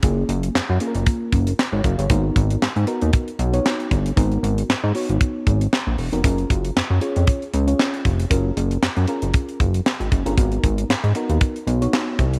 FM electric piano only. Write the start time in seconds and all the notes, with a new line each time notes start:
0.03 A#3 C#4 F4 G#4
0.80 A#3 C#4 F4 G#4
0.87 A#4
1.73 G#4 C#5
1.84 A#4 F5
1.99 G#4 C#5
2.10 A#3 D#4 F#4 A#4
2.16 B3
2.87 B3 D#4 F#4 A#4
3.53 B3 D#4 F#4 C#5
4.16 B3 D#4 F#4 A#4
4.95 B3 D#4 F#4 C#5
6.12 B3 D#4 F#4 A#4
6.23 C#4 F4 G#4 A#4
7.01 C#4 F4 G#4 C#5
7.67 C#4 F4 G#4 C#5
8.30 C#4 F4 G#4 A#4
9.08 C#4 F4 G#4 A#4
10.25 C#4 F4 G#4 A#4
10.37 B3 D#4 F#4 A#4
11.15 B3 D#4 F#4 A#4
11.81 B3 D#4 F#4 C#5